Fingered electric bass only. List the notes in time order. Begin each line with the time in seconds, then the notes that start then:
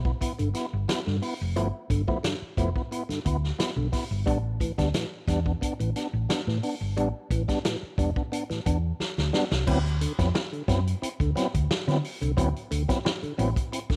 Already playing: B1
0.21 muted fingered electric bass stroke
0.40 G1
0.73 G1
1.07 G2
1.41 F1
1.56 G1
1.90 G1
2.42 muted fingered electric bass stroke
2.57 F1
3.09 muted fingered electric bass stroke
3.26 D2
3.59 muted fingered electric bass stroke
3.76 B1
4.11 G1
4.27 A1
4.78 D2
5.28 E2
5.62 muted fingered electric bass stroke
5.80 A1
6.13 A1
6.47 A2
6.81 G1
6.97 A1
7.30 A1
7.83 muted fingered electric bass stroke
7.98 E1
8.50 muted fingered electric bass stroke
8.66 E2
9.00 muted fingered electric bass stroke
9.18 D2
9.52 C2
9.67 D2
10.19 F2
10.68 F#2
11.02 muted fingered electric bass stroke
11.20 D2
11.55 D2
11.88 D3
12.22 C2
12.38 D2
12.71 D2
13.23 muted fingered electric bass stroke
13.39 A1
13.90 muted fingered electric bass stroke